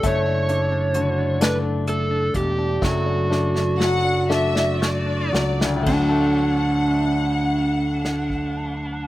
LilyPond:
<<
  \new Staff \with { instrumentName = "Violin section" } { \time 6/8 \key d \major \tempo 4. = 40 r2. | r4 fis''8 e''8 d''4 | fis''2. | }
  \new Staff \with { instrumentName = "Electric slide guitar" } { \time 6/8 \key d \major cis''4. b'8 a'8 g'8 | fis'2~ fis'8 r8 | d'2. | }
  \new Staff \with { instrumentName = "Clean electric guitar" } { \time 6/8 \key d \major a16 d'16 a16 d'16 fis'16 d'16 a16 d'16 a16 d'8 d'16 | a16 d'16 a16 d'16 fis'16 d'16 a16 d'16 a16 d'16 fis'16 d'16 | <a d' fis'>2. | }
  \new Staff \with { instrumentName = "Grand piano" } { \clef bass \time 6/8 \key d \major a8 d'8 d8 d'4. | fis8 d'8 fis8 d'4 fis8 | <d, a, d fis a>2. | }
  \new Staff \with { instrumentName = "Fingered electric bass" } { \clef bass \time 6/8 \key d \major fis,,2~ fis,,8 e,,8 | fis,,2~ fis,,8 cis,8 | d,2. | }
  \new DrumStaff \with { instrumentName = "Drums" } \drummode { \time 6/8 <hh bd>8 hh8 hh8 <hh sn>8 hh8 <hh bd>8 | <bd sn>8 sn16 sn16 sn8 sn16 sn16 sn8 sn16 sn16 | <cymc bd>4. r8 sn16 bd8. | }
>>